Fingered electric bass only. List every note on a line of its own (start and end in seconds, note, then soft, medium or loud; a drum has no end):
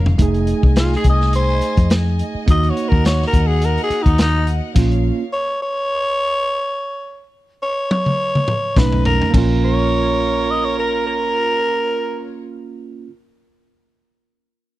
0.00 0.17 F1 medium
0.19 0.53 F1 medium
0.63 0.95 C2 medium
1.04 1.60 C2 medium
1.77 2.21 F2 medium
2.35 muted fingered electric bass stroke soft
2.48 2.70 D#2 loud
2.92 3.23 D#2 medium
3.34 3.77 D#2 medium
3.90 muted fingered electric bass stroke soft
4.06 4.59 D#2 medium
4.76 5.10 A#1 medium
8.76 9.20 B1 medium
9.34 13.08 A#1 medium